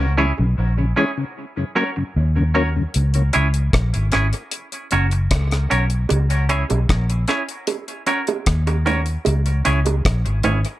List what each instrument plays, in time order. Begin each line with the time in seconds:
Already playing: fingered electric bass C#2
0.18 tonewheel organ E3 G#3 C#4, clean electric guitar C#4 E4 G#4 C#5
0.38 fingered electric bass B1, tonewheel organ C#3
0.58 fingered electric bass A#1
0.78 tonewheel organ C#3
0.96 tonewheel organ E3 G#3 C#4, clean electric guitar C#4 E4 G#4 C#5
1.18 tonewheel organ C#3
1.57 tonewheel organ F#2 C#3
1.75 tonewheel organ F#3 A#3 C#4, clean electric guitar C#4 F#4 A#4 C#5
1.96 tonewheel organ F#2 C#3, muted clean electric guitar stroke
2.16 fingered electric bass D#2
2.36 tonewheel organ F#2 C#3
2.55 tonewheel organ F#3 A#3 C#4, clean electric guitar C#4 F#4 A#4 C#5
2.76 tonewheel organ F#2 C#3
2.94 fingered electric bass C#2, closed hi-hat
3.14 tonewheel organ C#3, closed hi-hat
3.33 fingered electric bass C#2, clean electric guitar C#4 E4 G#4 C#5, closed hi-hat
3.54 closed hi-hat
3.73 fingered electric bass A#1, kick, cross-stick, closed hi-hat
3.94 fingered electric bass G#1, closed hi-hat
4.12 fingered electric bass G#1, clean electric guitar C#4 E4 G#4 C#5, cross-stick, closed hi-hat
4.33 closed hi-hat
4.51 closed hi-hat
4.72 closed hi-hat
4.91 fingered electric bass F#1, clean electric guitar C#4 F#4 A#4 C#5, closed hi-hat
5.11 muted clean electric guitar stroke, closed hi-hat
5.31 fingered electric bass C#2, kick, cross-stick, closed hi-hat
5.51 cross-stick, closed hi-hat
5.70 fingered electric bass B1, clean electric guitar C#4 F#4 A#4 C#5, closed hi-hat
5.90 closed hi-hat
6.09 fingered electric bass C#2, closed hi-hat, high bongo
6.30 closed hi-hat
6.49 clean electric guitar C#4 E4 G#4 C#5, closed hi-hat
6.70 fingered electric bass B1, closed hi-hat, high bongo
6.89 fingered electric bass A#1, kick, cross-stick, closed hi-hat
7.10 closed hi-hat
7.28 clean electric guitar C#4 E4 G#4 C#5, cross-stick, closed hi-hat
7.49 closed hi-hat
7.67 closed hi-hat, high bongo
7.88 closed hi-hat
8.07 clean electric guitar C#4 F#4 A#4 C#5, closed hi-hat
8.27 muted clean electric guitar stroke, closed hi-hat, high bongo
8.46 fingered electric bass D#2, kick, cross-stick, closed hi-hat
8.67 muted clean electric guitar stroke, closed hi-hat, high bongo
8.86 clean electric guitar C#4 F#4 A#4 C#5, closed hi-hat, low bongo
9.06 closed hi-hat
9.25 fingered electric bass C#2, closed hi-hat, high bongo
9.46 closed hi-hat
9.65 fingered electric bass C#2, clean electric guitar C#4 E4 G#4 C#5, closed hi-hat
9.86 closed hi-hat, high bongo
10.05 fingered electric bass A#1, kick, cross-stick, closed hi-hat
10.26 fingered electric bass G#1, closed hi-hat
10.43 fingered electric bass G#1, clean electric guitar C#4 E4 G#4 C#5, closed hi-hat, low bongo
10.65 closed hi-hat